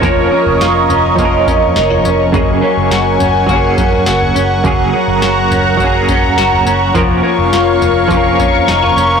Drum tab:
TB |x---x-x-x-x-x-x-|x---x-x-x-x-x-x-|x---x-x-x-x-x-x-|x---x-x-x-x-x-x-|
SD |----o-------o---|----o-------o---|----o-------o---|----o-------o---|
FT |o--o--o----o-o--|o-----o----o-o--|o-----o----o-o--|o-----o----o-o--|
BD |o-------o-o-----|o-------o-o-----|o-------o-o-----|o-------o-o-----|